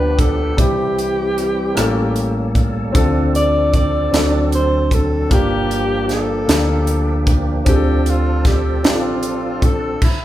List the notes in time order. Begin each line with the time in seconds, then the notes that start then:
Already playing: D2 G2 F3 A#3 B3 D4 F4 G4 B4
0.19 A4, kick, closed hi-hat
0.57 C2 C3 E3 G3 C4 E4 G4, kick, closed hi-hat
0.99 closed hi-hat
1.38 cross-stick, closed hi-hat
1.75 A1 A2 A#3 C#4 G4 A4, cross-stick, closed hi-hat
2.16 closed hi-hat
2.55 kick, closed hi-hat
2.92 D2 D3 C4 D4 F4 A4, kick, closed hi-hat
2.96 F3
3.35 D5, closed hi-hat
3.73 D5, kick, closed hi-hat
4.11 D2 D3 F#3 C4 D4 F#4, snare, closed hi-hat
4.15 A4
4.52 C5, closed hi-hat
4.91 A4, kick, closed hi-hat
5.29 G1 G2 F3 A#3 D4 F4 G4, kick, closed hi-hat
5.34 G4
5.71 closed hi-hat
6.09 A4, snare, closed hi-hat
6.47 D2 A#3 D4 F4 G4, snare, closed hi-hat
6.87 closed hi-hat
7.27 kick, closed hi-hat
7.65 D2 D3 C4 D4 F4 G4 G#4 A4, kick, closed hi-hat
7.75 A4
8.06 F4, closed hi-hat
8.45 G4, kick, snare, closed hi-hat
8.83 A1 C4 D4 F4 G4, snare, closed hi-hat
8.87 F4
8.94 A4
9.23 closed hi-hat
9.62 A4, kick, closed hi-hat
10.02 E4, kick, crash